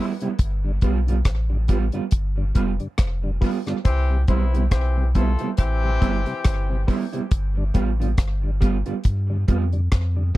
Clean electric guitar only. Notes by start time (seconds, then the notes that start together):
Already playing: G3 B3
0.00 E4
0.22 G3 B3 E4
0.83 G3 B3 F4
1.09 G3 B3 F4
1.69 G3 B3 F4
1.94 G3 B3 F4
2.56 G3 B3 F4
3.43 G3 B3 F4
3.68 G3 B3 F4
4.28 G3 B3 E4
4.54 G3 B3 E4
5.15 G3 B3 E4
5.40 G3 B3 E4
6.01 G3 B3 E4
6.87 G3 B3 E4
7.13 G3 B3 E4
7.74 G3 B3 F4
8.00 G3 B3 F4
8.61 G3 B3 F4
8.86 G3 B3 F4
9.48 G3 B3 F4